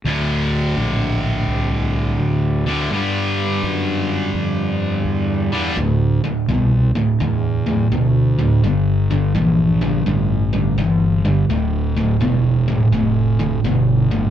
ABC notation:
X:1
M:4/4
L:1/8
Q:"Swing" 1/4=84
K:Dm
V:1 name="Distorted electric guitar" clef=bass
[D,,A,,D,]6- [D,,A,,D,] [D,,A,,D,] | [G,,D,G,]6- [G,,D,G,] [G,,D,G,] | [D,,A,,] [D,,A,,] [D,,=B,,] [D,,A,,] [D,,A,,] [D,,A,,] [D,,B,,] [D,,A,,] | [G,,D,] [G,,D,] [G,,E,] [G,,D,] [G,,D,] [G,,D,] [G,,E,] [G,,D,] |
[D,,A,,] [D,,A,,] [D,,=B,,] [D,,A,,] [D,,A,,] [D,,A,,] [D,,B,,] [D,,A,,] |]
V:2 name="Fingered electric bass" clef=bass
D,,2 B,,,2 C,,2 D,,2 | G,,2 ^F,,2 =F,,2 E,,2 | D,, z C,, z E,,2 D,,2 | G,,,2 B,,,2 A,,,2 G,,,2 |
D,,,2 E,,,2 F,,,2 G,,,2 |]